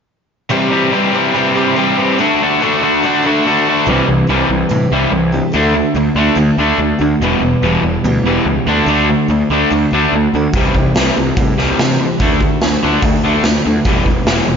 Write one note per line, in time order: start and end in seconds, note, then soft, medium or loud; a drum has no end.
0.50 0.69 C3 medium
0.50 0.70 E3 medium
0.50 0.71 G3 medium
0.50 0.71 C4 medium
0.50 0.72 G4 medium
0.70 0.90 C3 medium
0.70 0.91 E3 medium
0.70 0.92 G3 medium
0.70 0.92 C4 medium
0.70 0.93 G4 medium
0.92 1.12 C3 medium
0.92 1.12 E3 medium
0.92 1.13 G3 medium
0.92 1.14 C4 medium
0.92 1.14 G4 medium
1.13 1.32 C3 medium
1.13 1.33 E3 medium
1.13 1.34 G3 medium
1.13 1.34 C4 medium
1.13 1.35 G4 medium
1.33 1.54 C3 medium
1.33 1.55 E3 medium
1.33 1.56 G3 medium
1.33 1.56 C4 medium
1.33 1.57 G4 medium
1.55 1.75 C3 medium
1.55 1.76 E3 medium
1.55 1.77 G3 medium
1.55 1.77 C4 medium
1.55 1.78 G4 medium
1.76 1.97 C3 medium
1.76 1.97 E3 medium
1.76 1.98 G3 medium
1.76 1.98 C4 medium
1.76 1.99 G4 medium
1.98 2.18 C3 medium
1.98 2.18 E3 medium
1.98 2.18 G3 medium
1.98 2.18 C4 medium
1.98 2.19 G4 medium
2.18 2.40 D3 medium
2.18 2.41 A3 medium
2.18 2.42 D4 medium
2.18 2.42 F#4 medium
2.41 2.60 D3 medium
2.41 2.61 A3 medium
2.41 2.62 D4 medium
2.41 2.63 F#4 medium
2.62 2.82 D3 medium
2.62 2.82 A3 medium
2.62 2.83 D4 medium
2.62 2.83 F#4 medium
2.83 3.03 D3 medium
2.83 3.04 A3 medium
2.83 3.04 D4 medium
2.83 3.05 F#4 medium
3.04 3.24 D3 medium
3.04 3.25 A3 medium
3.04 3.25 D4 medium
3.04 3.26 F#4 medium
3.23 3.45 D3 medium
3.23 3.45 A3 medium
3.23 3.46 D4 medium
3.23 3.44 F#4 medium
3.27 3.47 F#4 medium
3.46 3.66 D3 medium
3.46 3.67 A3 medium
3.46 3.68 D4 medium
3.46 3.68 F#4 medium
3.67 3.86 D3 medium
3.67 3.87 A3 medium
3.67 3.87 D4 medium
3.67 3.87 F#4 medium
3.87 4.00 C2 medium
3.87 4.07 C3 medium
3.87 4.08 E3 medium
3.87 4.08 G3 medium
3.87 4.29 C4 medium
3.87 4.29 G4 medium
4.08 4.21 C2 medium
4.08 4.27 C3 medium
4.08 4.27 E3 medium
4.29 4.42 C2 medium
4.29 4.49 C3 medium
4.29 4.49 E3 medium
4.29 4.49 G3 medium
4.29 4.70 C4 medium
4.29 4.70 G4 medium
4.49 4.63 C2 medium
4.49 4.69 C3 medium
4.49 4.69 E3 medium
4.71 4.84 A2 medium
4.71 4.90 C3 medium
4.71 4.90 E3 medium
4.71 4.91 G3 medium
4.71 4.91 C4 medium
4.71 4.89 G4 medium
4.90 5.05 C2 medium
4.90 5.11 C3 medium
4.90 5.11 E3 medium
4.90 5.12 G3 medium
4.90 5.32 C4 soft
4.90 5.31 G4 soft
5.12 5.39 C2 medium
5.12 5.31 C3 medium
5.12 5.31 E3 medium
5.32 5.52 C3 medium
5.32 5.52 E3 medium
5.32 5.53 G3 soft
5.32 5.53 C4 soft
5.32 5.54 G4 medium
5.54 5.81 D2 medium
5.54 5.74 D3 medium
5.54 5.74 A3 medium
5.54 5.74 D4 medium
5.54 5.96 F#4 medium
5.75 5.94 D3 medium
5.75 5.94 A3 medium
5.94 6.08 D2 medium
5.94 6.15 D3 medium
5.94 6.15 A3 medium
5.94 6.15 D4 medium
5.94 6.14 F#4 medium
6.15 6.29 D2 medium
6.15 6.36 D3 medium
6.15 6.37 A3 medium
6.15 6.37 D4 medium
6.15 6.37 F#4 soft
6.36 6.50 D2 medium
6.36 6.56 D3 medium
6.36 6.57 A3 medium
6.36 6.57 D4 medium
6.36 6.56 F#4 medium
6.57 6.71 D2 medium
6.57 6.78 D3 medium
6.57 6.79 A3 medium
6.57 6.79 D4 medium
6.57 6.97 F#4 soft
6.78 6.92 D2 medium
6.78 6.98 D3 medium
6.78 6.98 A3 medium
6.99 7.13 D2 medium
6.99 7.19 D3 medium
6.99 7.20 A3 medium
6.99 7.21 D4 soft
6.99 7.20 F#4 medium
7.20 7.34 E1 medium
7.20 7.41 E2 medium
7.20 7.41 B2 medium
7.20 7.42 E3 medium
7.20 7.63 G3 medium
7.20 7.64 B3 medium
7.20 7.64 G4 medium
7.40 7.54 E1 medium
7.40 7.61 E2 medium
7.40 7.61 B2 medium
7.62 7.76 E1 medium
7.62 7.82 E2 medium
7.62 7.83 B2 medium
7.62 7.83 E3 medium
7.62 8.04 G3 medium
7.62 8.04 B3 medium
7.62 8.05 G4 medium
7.82 7.96 E1 medium
7.82 8.03 E2 medium
7.82 8.03 B2 medium
8.04 8.18 D2 medium
8.04 8.24 E2 medium
8.04 8.24 B2 medium
8.04 8.26 E3 medium
8.04 8.26 G3 medium
8.04 8.25 B3 medium
8.04 8.24 G4 medium
8.24 8.37 E1 medium
8.24 8.45 E2 medium
8.24 8.45 B2 medium
8.24 8.46 E3 medium
8.24 8.67 B3 soft
8.24 8.66 G4 soft
8.28 8.68 G3 soft
8.45 8.59 C#2 medium
8.45 8.65 E2 medium
8.45 8.66 B2 medium
8.66 8.80 D2 medium
8.66 8.87 D3 medium
8.66 8.87 A3 medium
8.66 8.87 D4 loud
8.66 8.87 F#4 soft
8.86 9.13 D2 medium
8.86 9.08 D3 medium
8.86 9.08 A3 medium
8.86 9.08 D4 medium
8.86 9.29 F#4 medium
9.10 9.28 D3 soft
9.10 9.28 A3 medium
9.28 9.42 D2 medium
9.28 9.49 D3 medium
9.28 9.49 A3 medium
9.28 9.50 D4 medium
9.28 9.49 F#4 medium
9.50 9.63 D2 medium
9.50 9.70 D3 medium
9.50 9.71 A3 medium
9.50 9.71 D4 medium
9.50 9.71 F#4 soft
9.71 9.84 D2 medium
9.71 9.90 D3 medium
9.71 9.91 A3 medium
9.71 9.91 D4 medium
9.71 9.90 F#4 medium
9.91 10.05 D2 medium
9.91 10.12 D3 medium
9.91 10.12 A3 medium
9.91 10.13 D4 medium
9.91 10.33 F#4 soft
10.13 10.26 D2 medium
10.13 10.32 D3 medium
10.13 10.32 A3 medium
10.34 10.47 D2 medium
10.34 10.53 D3 medium
10.34 10.53 A3 medium
10.34 10.55 D4 soft
10.34 10.54 F#4 soft
10.53 10.66 C2 medium
10.53 10.74 C3 medium
10.53 10.75 E3 medium
10.53 10.75 G3 medium
10.53 10.96 C4 medium
10.53 10.96 G4 medium
10.53 kick medium
10.53 open hi-hat soft
10.75 10.88 C2 medium
10.75 10.94 C3 medium
10.75 10.94 E3 medium
10.75 kick medium
10.96 11.09 C2 medium
10.96 11.16 C3 medium
10.96 11.16 E3 medium
10.96 11.16 G3 medium
10.96 11.17 C4 medium
10.96 11.15 G4 medium
10.96 snare medium
10.96 open hi-hat soft
11.16 11.30 C2 medium
11.16 11.36 C3 medium
11.16 11.36 E3 medium
11.16 11.37 G3 soft
11.16 11.38 C4 soft
11.16 11.37 G4 soft
11.37 11.50 A2 medium
11.37 11.56 C3 medium
11.37 11.57 E3 medium
11.37 11.58 G3 medium
11.37 11.59 C4 medium
11.37 11.57 G4 medium
11.37 kick loud
11.37 open hi-hat soft
11.58 11.71 C2 medium
11.58 11.78 C3 medium
11.58 11.78 E3 medium
11.58 11.78 G3 medium
11.58 12.00 C4 soft
11.58 11.97 G4 soft
11.58 snare soft
11.79 12.05 C3 medium
11.79 11.98 C3 medium
11.79 11.98 E3 medium
11.79 snare loud
11.79 open hi-hat soft
11.99 12.18 C3 medium
11.99 12.18 E3 medium
11.99 12.20 G3 soft
11.99 12.21 C4 soft
11.99 12.20 G4 medium
12.19 12.46 D2 medium
12.19 12.40 D3 medium
12.19 12.40 A3 medium
12.19 12.40 D4 medium
12.19 12.62 F#4 medium
12.19 kick loud
12.19 open hi-hat soft
12.41 12.60 D3 soft
12.41 12.60 A3 medium
12.41 kick medium
12.61 12.75 D2 medium
12.61 12.81 D3 medium
12.61 12.81 A3 medium
12.61 13.03 D4 medium
12.61 13.03 F#4 medium
12.61 snare medium
12.61 open hi-hat soft
12.83 12.96 D2 medium
12.83 13.02 D3 medium
12.83 13.02 A3 medium
12.83 13.03 D4 medium
13.02 13.16 D2 medium
13.02 13.22 D3 medium
13.02 13.22 A3 medium
13.02 13.24 D4 medium
13.02 13.22 F#4 medium
13.02 kick loud
13.02 open hi-hat soft
13.23 13.37 D2 medium
13.23 13.43 D3 medium
13.23 13.43 A3 medium
13.23 13.44 D4 medium
13.23 13.63 F#4 medium
13.44 13.58 D2 medium
13.44 13.63 D3 medium
13.44 13.63 A3 medium
13.44 snare loud
13.44 open hi-hat soft
13.64 13.79 D2 medium
13.64 13.84 D3 medium
13.64 13.84 A3 medium
13.64 13.86 D4 soft
13.64 13.85 F#4 medium
13.85 13.98 E1 medium
13.85 14.05 E2 medium
13.85 14.05 B2 medium
13.85 14.06 E3 medium
13.85 14.26 G3 medium
13.85 14.28 B3 medium
13.85 14.28 G4 medium
13.85 kick loud
13.85 open hi-hat soft
14.06 14.19 E1 medium
14.06 14.25 E2 medium
14.06 14.25 B2 medium
14.06 kick medium
14.26 14.40 E1 medium
14.26 14.45 E2 medium
14.26 14.46 B2 medium
14.26 14.47 E3 medium
14.26 14.46 G3 medium
14.26 14.46 B3 medium
14.26 14.44 G4 medium
14.26 snare medium
14.26 open hi-hat soft
14.45 14.57 E1 medium
14.45 14.57 E2 medium
14.45 14.57 B2 medium
14.45 14.57 E3 soft
14.45 14.57 G3 soft
14.45 14.57 B3 soft
14.45 14.57 G4 soft